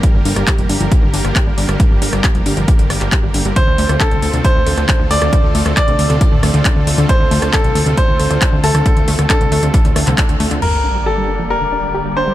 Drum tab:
CC |----------------|----------------|----------------|----------------|
HH |x-oxxxoxx-oxx-ox|x-oxxxoxxxoxx-ox|x-oxxxoxx-oxx-ox|x-oxxxoxx-oxx-ox|
CP |----x-------x---|----x------xx---|----x-------x---|----x-------x---|
SD |---r-------r---r|---r------r-----|---r-------r---r|---r------r-----|
BD |o---o---o---o---|o---o---o---o---|o---o---o---o---|o---o---o---o---|

CC |----------------|----------------|x---------------|
HH |x-oxxxoxx-oxx-ox|xxoxxxoxxxoxxxox|----------------|
CP |----x-------x---|----x------xx---|----------------|
SD |---r-------r---r|---r------r-----|----------------|
BD |o---o---o---o---|o---o---o---o---|----------------|